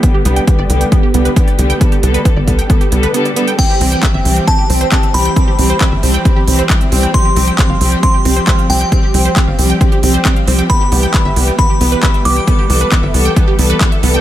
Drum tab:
CC |----------------|----------------|x---------------|----------------|
HH |x-xxx-xxx-xxxxxx|xxxxx-xxxxxxxxxx|x-oxx-oxx-oxxxox|x-oxx-oxx-oxxxox|
CP |----------------|----------------|----x-------x---|----x-------x---|
BD |o---o---o---o---|o---o-o-o-------|o---o---o---o---|o---o---o---o---|

CC |----------------|----------------|----------------|----------------|
HH |x-oxx-oxx-oxxxox|x-oxx-oxxxoxxxox|x-oxx-oxx-oxxxox|x-oxx-oxx-oxxxox|
CP |----x-------x---|----x-------x---|----x-------x---|----x-------x---|
BD |o---o---o---o---|o---o---o---o---|o---o---o---o---|o---o---o---o---|